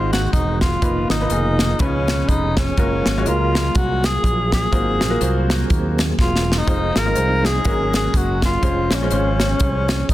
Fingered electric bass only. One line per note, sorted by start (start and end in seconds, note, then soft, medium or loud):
0.00 0.26 G#1 loud
0.33 0.75 E1 medium
0.82 1.07 F1 loud
1.10 1.27 G#1 medium
1.30 1.72 F1 loud
1.80 2.21 C#2 loud
2.28 2.70 F1 medium
2.78 3.02 F#1 loud
3.06 3.23 G#1 medium
3.27 3.68 C#2 medium
3.75 4.17 C2 medium
4.24 4.65 A#1 medium
4.72 4.97 G#1 loud
5.02 5.19 A#1 medium
5.21 5.63 C2 medium
5.70 6.12 D#2 medium
6.19 6.60 E1 medium
6.68 6.92 F1 loud
6.96 7.13 G#1 medium
7.17 7.58 C2 medium
7.65 8.07 G#1 medium
8.14 8.56 F#1 medium
8.63 8.87 F1 loud
8.91 9.08 A#1 medium
9.12 9.53 G#1 medium
9.60 10.02 C2 medium
10.09 10.14 C#2 medium